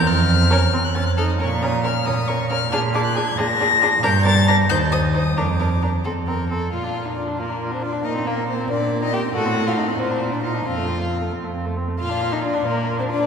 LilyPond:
<<
  \new Staff \with { instrumentName = "Violin" } { \time 6/8 \key bes \minor \tempo 4. = 91 f'''4.~ f'''16 ges'''16 a'''16 ges'''16 f'''16 ees'''16 | des'''8 ees'''8 f'''8 ees'''8 des'''8 f'''8 | f'''8 d'''16 ges'''16 aes'''8 bes'''4. | \key bes \major g'''8 a'''8 bes'''8 g'''8 ees'''8 ees'''8 |
d'''4. r4. | f''8. ees''16 d''8 bes'8. c''16 d''8 | ees''8 bes'8 c''8 d''8. ees''16 g''8 | fis''8. f''16 ees''8 c''8. d''16 ees''8 |
f''4. r4. | f''8. ees''16 d''8 bes'8. c''16 d''8 | }
  \new Staff \with { instrumentName = "Violin" } { \time 6/8 \key bes \minor r4 bes'16 r4 r16 a'16 r16 | bes'8 bes'8 bes'8 bes'8 bes'8 bes'8 | aes'8 aes'8 aes'8 aes'8 aes'8 aes'8 | \key bes \major bes'8 bes'8 bes'8 c''8 c''8 c''8 |
bes'8 bes'8 bes'8 a'8 bes'8 a'8 | f'8. ees'16 d'8 bes8. c'16 d'8 | ees'8 bes8 c'8 d'8. ees'16 g'8 | fis'8. f'16 ees'8 c'8. d'16 ees'8 |
f'4. r4. | f'8. ees'16 d'8 bes8. c'16 d'8 | }
  \new Staff \with { instrumentName = "Viola" } { \time 6/8 \key bes \minor r4 des'16 r16 c'8 des'8 ees'8 | des'8 des'8 des'8 des'8 des'8 des'8 | d'8 d'8 d'8 d'8 d'8 d'8 | \key bes \major d'8 d'8 d'8 ees'8 ees'8 ees'8 |
d'8 d'8 d'8 c'8 c'8 c'8 | f'16 d'16 f'16 d'16 f'16 d'16 f'16 d'16 f'16 d'16 f'16 d'16 | bes16 c'16 bes16 c'16 bes16 c'16 bes16 c'16 bes16 c'16 bes16 c'16 | a16 c'16 a16 c'16 a16 c'16 f'16 d'16 f'16 d'16 f'16 d'16 |
c'16 a16 c'16 a16 c'16 a16 c'16 a16 c'16 a16 c'16 a16 | f'16 d'16 f'16 d'16 f'16 d'16 f'16 d'16 f'16 d'16 f'16 d'16 | }
  \new Staff \with { instrumentName = "Cello" } { \clef bass \time 6/8 \key bes \minor f,4. f,4. | bes,4. bes,4. | bes,4. bes,4. | \key bes \major g,4. ees,4. |
f,4. f,4. | bes,4. bes,4. | bes,4. bes,4. | a,4. bes,4. |
f,4. f,4. | bes,4. bes,4. | }
>>